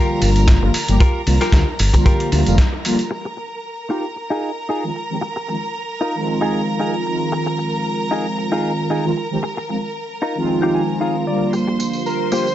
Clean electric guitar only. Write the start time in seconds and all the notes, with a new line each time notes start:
Already playing: F4 G4 A#4
0.62 muted clean electric guitar stroke
1.00 F4 G4 A#4
1.41 F4 G4 A#4
1.94 muted clean electric guitar stroke
2.06 F4 G4 A#4
2.73 muted clean electric guitar stroke
3.11 muted clean electric guitar stroke
3.25 muted clean electric guitar stroke
3.37 muted clean electric guitar stroke
3.90 D#4 F4 G4
4.16 muted clean electric guitar stroke
4.30 D#4 F4 G#4
4.69 D#4 F4 G#4
4.95 muted clean electric guitar stroke
5.21 muted clean electric guitar stroke
5.36 muted clean electric guitar stroke
5.48 muted clean electric guitar stroke
6.01 D#4 F4 A#4
6.27 muted clean electric guitar stroke
6.41 D#4 F4 G#4
6.79 D#4 F4 G#4
7.06 muted clean electric guitar stroke
7.32 muted clean electric guitar stroke
7.46 muted clean electric guitar stroke
7.58 muted clean electric guitar stroke
8.11 D#4 F4 G#4
8.38 muted clean electric guitar stroke
8.52 D#4 F4 G#4
8.90 D#4 F4 G#4
9.17 muted clean electric guitar stroke
9.43 muted clean electric guitar stroke
9.57 muted clean electric guitar stroke
9.69 muted clean electric guitar stroke
10.22 D#4 F4 A#4
10.48 muted clean electric guitar stroke
10.62 D#4 F4 G4
10.75 G#5
11.00 D#4 F4 G#4 F5
11.27 D5, muted clean electric guitar stroke
11.53 muted clean electric guitar stroke
11.68 muted clean electric guitar stroke
11.79 muted clean electric guitar stroke
12.32 A#3 F4 G4